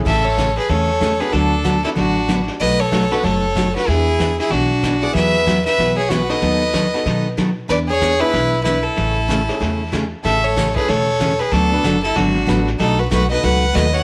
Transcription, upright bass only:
X:1
M:4/4
L:1/8
Q:"Swing" 1/4=188
K:A
V:1 name="Upright bass" clef=bass
A,,,4 E,,4 | D,,4 A,,,4 | B,,,4 F,,,4 | E,,4 B,,,4 |
E,,4 B,,,4 | ^D,,4 B,,4 | E,,4 B,,,4 | A,,,4 E,,4 |
A,,,4 E,,,4 | D,,2 F,,,2 G,,,2 A,,,2 | B,,,2 B,,,2 C,,2 ^D,,2 |]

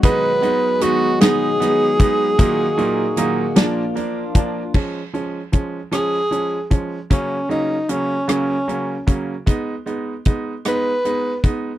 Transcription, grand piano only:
X:1
M:6/8
L:1/8
Q:3/8=51
K:Dbmix
V:1 name="Grand piano"
[^G,=B,^D] [G,B,D] [G,B,D] [G,B,D] [B,D] [G,B,D] | [B,,G,B,E] [B,,G,B,E] [B,,G,B,E] [F,B,=D] [B,D] [F,B,D] | [F,A,D] [F,A,D] [F,A,D] [F,A,D] [F,A,D] [F,A,D] | [D,G,B,D] [D,G,B,D] [D,G,B,D] [D,G,B,D] [D,G,B,D] [D,G,B,D] |
[^G,=B,^D] [G,B,D] [G,B,D] [G,B,D] [G,B,D] [G,B,D] |]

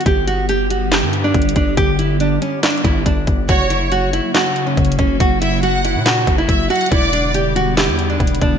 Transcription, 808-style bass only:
X:1
M:4/4
L:1/16
Q:1/4=140
K:F#phr
V:1 name="808-style bass" clef=bass
G,,,8- G,,, G,,3 G,,,2 G,,,2 | G,,,6 z4 G,,,2 G,,,2 G,,,2 | F,,,6- F,,, z4 z F,,,2 F,,,2 | F,,,6- F,,, ^A,,3 F,,,2 F,,,2 z2 |
E,,,8- E,,, E,,3 E,,,2 E,,,2 |]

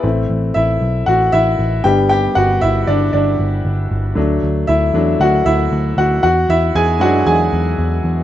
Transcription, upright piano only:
X:1
M:4/4
L:1/8
Q:1/4=116
K:G
V:1 name="Upright piano"
z2 [Ee]2 [Ff] [Ee]2 [Gg] | [Gg] [Ff] [Ee] [Dd] [Dd]3 z | z2 [Ee]2 [Ff] [Ee]2 [Ff] | [Ff] [Ee] [^G^g] [Ff] [Gg]3 z |]
V:2 name="Upright piano"
[A,CE] z6 [G,B,D]- | [G,B,D]2 z6 | [F,A,D]3 [F,A,D] z4 | z3 [F,^G,D] z4 |]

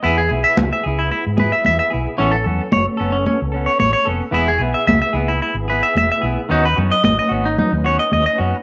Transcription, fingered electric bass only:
X:1
M:4/4
L:1/16
Q:1/4=111
K:E
V:1 name="Fingered electric bass" clef=bass
E,,2 B,,, z C,, z C,,2 z G,,2 z E,, z B,,, z | A,,,2 E,, z F,,, z F,,,2 z C,,2 z A,,, z =F,,, z | E,,,2 B,,, z C,, z C,,2 z G,,,2 z E,,, z B,,, z | D,,2 F,, z G,,, z G,,,2 z D,,2 z D,, z F,, z |]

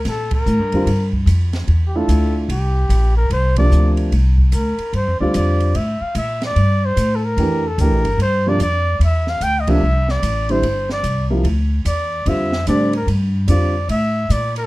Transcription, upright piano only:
X:1
M:4/4
L:1/8
Q:"Swing" 1/4=147
K:Gdor
V:1 name="Upright piano"
z3 [D,G,CF] z4 | z [A,DEF]3 z4 | z [C,F,B,D]3 z4 | z [D,G,CF]3 z4 |
z4 [E,A,DG] z [E,A,DG] z | z [C,F,B,D] z4 z [C,F,B,D] | z3 [D,G,CE] z3 [C,F,B,E] | z4 [D,G,CF] z [D,G,CD] z |
z2 [D,G,CF] z4 z |]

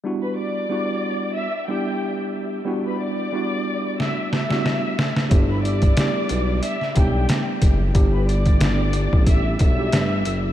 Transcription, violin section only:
X:1
M:4/4
L:1/16
Q:"Swing 16ths" 1/4=91
K:Em
V:1 name="Violin section"
z [Bb] [dd']6 [ee']2 [Gg]3 z3 | z [Bb] [dd']6 [ee']2 [ee']6 | z [Bb] [dd']6 [ee']2 [Gg]3 z3 | z [Bb] [dd']6 [ee']2 [ee']6 |]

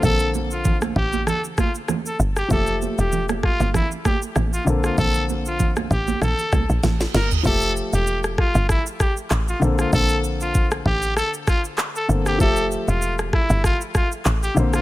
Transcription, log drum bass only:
X:1
M:4/4
L:1/16
Q:"Swing 16ths" 1/4=97
K:F
V:1 name="Log drum bass" clef=bass
B,,,6 A,,,3 z4 z G,,,2 | F,,,3 E,,,4 G,,,2 z3 A,,,2 B,,,2 | B,,,6 A,,,2 B,,, z C,, B,,, A,,,2 G,,,2 | F,,,3 E,,,4 G,,,2 z3 A,,,2 B,,,2 |
B,,,6 A,,,3 z4 z G,,,2 | F,,,3 E,,,4 G,,,2 z3 A,,,2 B,,,2 |]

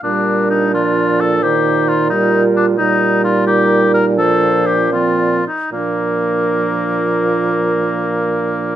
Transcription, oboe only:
X:1
M:6/8
L:1/8
Q:3/8=84
K:Bb
V:1 name="Oboe"
D2 E F2 A | G2 F E2 D | E2 F G2 B | A2 G F2 E |
B,6- | B,6 |]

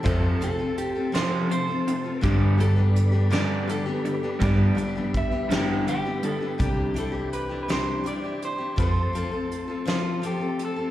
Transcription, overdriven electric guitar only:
X:1
M:6/8
L:1/8
Q:3/8=55
K:C
V:1 name="Overdriven electric guitar" clef=bass
[F,,C,F,] [F,,C,] z [F,,C,F,] [F,,C,] [F,,C,] | [G,,D,G,] [G,,D,] z [G,,D,G,] [G,,D,] [G,,D,] | [G,,D,G,] [G,,D,] z [G,,D,G,] [G,,D,] [G,,D,] | z6 |
z6 |]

